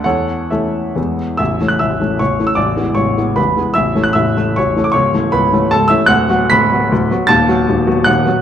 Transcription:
<<
  \new Staff \with { instrumentName = "Grand piano" } { \time 3/4 \key a \major \tempo 4 = 153 <a' cis'' fis''>4 <a' cis'' e''>4. r8 | <e'' e'''>8. fis'''16 <e'' e'''>4 <cis'' cis'''>8. e'''16 | <d'' d'''>4 <cis'' cis'''>4 <b' b''>4 | <e'' e'''>8. fis'''16 <e'' e'''>4 <cis'' cis'''>8. d'''16 |
<cis'' cis'''>4 <b' b''>4 <a' a''>8 <e'' e'''>8 | <fis'' fis'''>4 <b'' b'''>2 | <a'' a'''>2 <fis'' fis'''>8 r8 | }
  \new Staff \with { instrumentName = "Grand piano" } { \clef bass \time 3/4 \key a \major e,4 <e a cis'>4 <e, e gis b>4 | <a,,, a,,>8 <e a cis'>8 <a,,, a,,>8 <e a cis'>8 <a,,, a,,>8 <e a cis'>8 | <a,,, a,,>8 <e gis b>8 <a,,, a,,>8 <e gis b>8 <a,,, a,,>8 <e gis b>8 | <a,,, a,,>8 <e a cis'>8 <a,,, a,,>8 <e a cis'>8 <a,,, a,,>8 <e a cis'>8 |
<cis,, cis,>8 <e a cis'>8 <cis,, cis,>8 <e a cis'>8 <cis,, cis,>8 <e a cis'>8 | <d,, d,>8 <fis b fis'>8 <d,, d,>8 <fis b fis'>8 <d,, d,>8 <fis b fis'>8 | <dis,, dis,>8 <fis b fis'>8 <dis,, dis,>8 <fis b fis'>8 <dis,, dis,>8 <fis b fis'>8 | }
>>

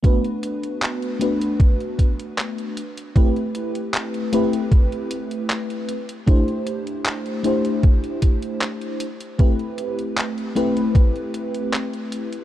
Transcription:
<<
  \new Staff \with { instrumentName = "FM electric piano" } { \time 4/4 \key a \dorian \tempo 4 = 77 <a b d' fis' b'>4. <a b d' fis' b'>2 r8 | <a c' e' g' b'>8 r4 <a c' e' g' b'>8 r2 | <a d' e' g' c''>4. <a d' e' g' c''>2 r8 | <a c' e' g' b'>8 r4 <a c' e' g' b'>8 r2 | }
  \new DrumStaff \with { instrumentName = "Drums" } \drummode { \time 4/4 <hh bd>16 hh16 hh16 hh16 <hc hh>16 hh16 hh16 hh16 <hh bd>16 hh16 <hh bd>16 hh16 <hc hh>16 hh16 hh16 hh16 | <hh bd>16 hh16 hh16 hh16 <hc hh>16 hh16 hh16 hh16 <hh bd>16 hh16 hh16 hh16 <hc hh>16 hh16 hh16 hh16 | <hh bd>16 hh16 hh16 hh16 <hc hh>16 hh16 hh16 hh16 <hh bd>16 hh16 <hh bd>16 hh16 <hc hh>16 hh16 hh16 hh16 | <hh bd>16 hh16 hh16 hh16 <hc hh>16 hh16 hh16 hh16 <hh bd>16 hh16 hh16 hh16 <hc hh>16 hh16 hh16 hh16 | }
>>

